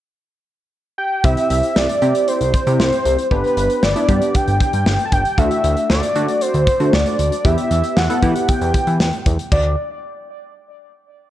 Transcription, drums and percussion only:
1.24 kick loud
1.24 closed hi-hat medium
1.37 closed hi-hat medium
1.50 closed hi-hat medium
1.63 closed hi-hat soft
1.76 snare loud
1.89 closed hi-hat medium
2.02 closed hi-hat medium
2.15 closed hi-hat medium
2.28 closed hi-hat medium
2.41 closed hi-hat soft
2.53 kick medium
2.53 closed hi-hat medium
2.66 closed hi-hat soft
2.79 snare loud
2.92 closed hi-hat soft
3.05 closed hi-hat medium
3.18 closed hi-hat soft
3.31 kick loud
3.31 closed hi-hat medium
3.44 closed hi-hat medium
3.57 closed hi-hat medium
3.70 closed hi-hat soft
3.83 snare loud
3.96 closed hi-hat medium
4.09 kick medium
4.09 closed hi-hat medium
4.22 closed hi-hat medium
4.34 kick medium
4.34 closed hi-hat medium
4.47 closed hi-hat soft
4.60 kick medium
4.60 closed hi-hat medium
4.73 closed hi-hat soft
4.86 snare loud
4.99 closed hi-hat soft
5.12 kick loud
5.12 closed hi-hat medium
5.25 closed hi-hat soft
5.38 kick loud
5.38 closed hi-hat medium
5.51 closed hi-hat medium
5.64 closed hi-hat medium
5.77 closed hi-hat soft
5.90 snare loud
6.03 closed hi-hat medium
6.16 closed hi-hat medium
6.29 closed hi-hat medium
6.41 closed hi-hat medium
6.54 closed hi-hat soft
6.67 kick medium
6.67 closed hi-hat medium
6.80 closed hi-hat soft
6.93 snare loud
7.06 closed hi-hat soft
7.19 closed hi-hat medium
7.32 closed hi-hat soft
7.45 kick loud
7.45 closed hi-hat medium
7.58 closed hi-hat medium
7.71 closed hi-hat medium
7.84 closed hi-hat soft
7.97 snare loud
8.10 closed hi-hat medium
8.22 kick medium
8.22 closed hi-hat medium
8.35 closed hi-hat medium
8.48 kick medium
8.48 closed hi-hat medium
8.61 closed hi-hat soft
8.74 kick medium
8.74 closed hi-hat medium
8.87 closed hi-hat soft
9.00 snare loud
9.13 closed hi-hat soft
9.26 kick loud
9.26 closed hi-hat medium
9.39 closed hi-hat soft
9.52 kick loud
9.52 crash medium

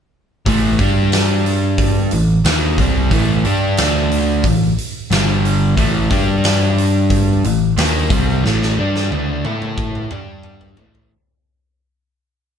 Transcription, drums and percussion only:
0.46 kick loud
0.46 open hi-hat medium
0.79 kick medium
0.79 open hi-hat medium
1.12 snare loud
1.12 open hi-hat medium
1.46 open hi-hat medium
1.78 kick loud
1.78 open hi-hat medium
2.11 open hi-hat medium
2.45 snare loud
2.45 open hi-hat medium
2.78 kick loud
2.78 open hi-hat medium
3.11 kick loud
3.11 open hi-hat medium
3.45 open hi-hat medium
3.77 snare loud
3.77 open hi-hat medium
4.11 open hi-hat medium
4.44 kick medium
4.44 open hi-hat medium
4.78 open hi-hat medium
5.11 snare loud
5.11 open hi-hat medium
5.45 open hi-hat medium
5.77 kick medium
5.77 open hi-hat medium
6.11 kick loud
6.11 open hi-hat medium
6.44 snare loud
6.44 open hi-hat medium
6.78 open hi-hat medium
7.10 kick medium
7.10 open hi-hat medium
7.44 open hi-hat medium
7.77 snare loud
7.77 open hi-hat medium
8.10 kick loud
8.10 open hi-hat medium
8.46 snare medium
8.62 snare medium
8.96 snare medium
9.12 high tom medium
9.45 high tom medium
9.62 mid tom medium
9.78 kick loud
9.95 mid tom medium
10.11 mid tom medium
10.43 mid tom medium
10.61 floor tom medium
10.77 floor tom loud
10.95 floor tom medium

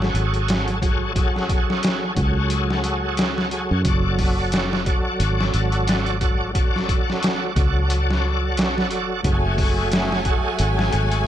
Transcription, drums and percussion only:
0.02 snare medium
0.15 closed hi-hat medium
0.34 closed hi-hat soft
0.48 snare loud
0.48 closed hi-hat medium
0.68 closed hi-hat soft
0.82 kick medium
0.82 closed hi-hat medium
1.16 kick loud
1.16 closed hi-hat medium
1.36 snare soft
1.49 kick medium
1.49 closed hi-hat medium
1.70 snare soft
1.83 snare loud
1.83 closed hi-hat medium
2.17 kick medium
2.17 closed hi-hat medium
2.50 closed hi-hat medium
2.70 snare soft
2.84 closed hi-hat medium
3.17 snare loud
3.17 closed hi-hat medium
3.38 snare soft
3.51 closed hi-hat medium
3.85 kick loud
3.85 closed hi-hat medium
4.19 kick loud
4.19 open hi-hat medium
4.52 snare loud
4.52 closed hi-hat medium
4.73 snare medium
4.86 kick medium
4.86 closed hi-hat medium
5.20 closed hi-hat medium
5.41 snare medium
5.54 closed hi-hat medium
5.72 closed hi-hat soft
5.88 snare loud
5.88 closed hi-hat medium
6.06 closed hi-hat soft
6.21 kick medium
6.21 closed hi-hat medium
6.55 kick loud
6.55 closed hi-hat medium
6.76 snare soft
6.89 kick loud
6.89 closed hi-hat medium
7.10 snare soft
7.23 snare loud
7.23 closed hi-hat medium
7.56 kick medium
7.56 closed hi-hat medium
7.90 closed hi-hat medium
8.11 snare soft
8.57 snare loud
8.57 closed hi-hat medium
8.78 snare medium
8.91 closed hi-hat medium
9.24 kick loud
9.24 closed hi-hat medium
9.58 kick medium
9.58 open hi-hat medium
9.92 snare loud
9.92 closed hi-hat medium
10.12 snare medium
10.25 kick medium
10.25 closed hi-hat medium
10.59 closed hi-hat medium
10.79 snare medium
10.93 closed hi-hat medium
11.12 closed hi-hat soft

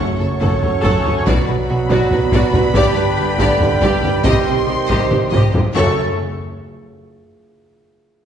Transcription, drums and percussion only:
0.41 taiko medium
0.62 taiko low medium
0.84 taiko loud
1.05 taiko low medium
1.27 taiko loud
1.90 taiko loud
2.11 taiko low medium
2.32 taiko loud
2.53 taiko low medium
2.74 taiko loud
3.38 taiko loud
3.61 taiko low medium
3.82 taiko loud
4.03 taiko low medium
4.24 taiko loud
4.89 taiko medium
5.11 taiko mid medium
5.33 taiko low-mid loud
5.55 taiko low loud
5.76 taiko low loud

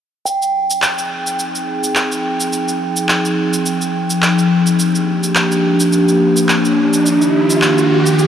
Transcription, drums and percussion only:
0.26 shaker soft
0.42 shaker soft
0.70 shaker medium
0.82 clap medium
0.82 shaker soft
0.98 shaker soft
1.27 shaker medium
1.40 shaker soft
1.55 shaker soft
1.84 shaker medium
1.95 clap medium
1.95 shaker soft
2.12 shaker soft
2.40 shaker medium
2.53 shaker soft
2.68 shaker soft
2.97 shaker medium
3.09 clap loud
3.09 shaker soft
3.25 shaker soft
3.53 shaker medium
3.66 shaker medium
3.82 shaker soft
4.10 shaker medium
4.22 clap loud
4.22 shaker soft
4.39 shaker soft
4.67 shaker medium
4.79 shaker medium
4.95 shaker soft
5.23 shaker medium
5.35 clap loud
5.35 shaker medium
5.52 shaker soft
5.80 shaker medium
5.93 shaker soft
6.09 shaker soft
6.37 shaker medium
6.49 clap medium
6.49 shaker medium
6.65 shaker soft
6.93 shaker medium
7.06 shaker medium
7.22 shaker soft
7.50 shaker medium
7.62 clap loud
7.62 shaker medium
7.78 shaker soft
8.06 shaker medium
8.19 shaker medium

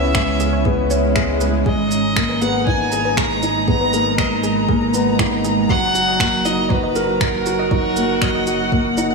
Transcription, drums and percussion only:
0.15 finger snap loud
0.15 kick loud
0.40 shaker medium
0.65 kick loud
0.90 shaker medium
1.16 finger snap medium
1.16 kick loud
1.41 shaker medium
1.66 kick loud
1.91 shaker medium
2.16 finger snap loud
2.16 kick loud
2.42 shaker medium
2.67 kick loud
2.92 shaker medium
3.17 finger snap loud
3.17 kick loud
3.43 shaker medium
3.68 kick loud
3.93 shaker medium
4.18 finger snap loud
4.18 kick loud
4.44 shaker medium
4.69 kick loud
4.94 shaker medium
5.19 finger snap loud
5.19 kick loud
5.44 shaker medium
5.69 kick loud
5.95 shaker medium
6.20 finger snap loud
6.20 kick loud
6.45 shaker medium
6.70 kick loud
6.96 shaker medium
7.21 finger snap loud
7.21 kick loud
7.46 shaker medium
7.71 kick loud
7.96 shaker medium
8.22 finger snap medium
8.22 kick loud
8.47 shaker medium
8.72 kick loud
8.97 shaker medium

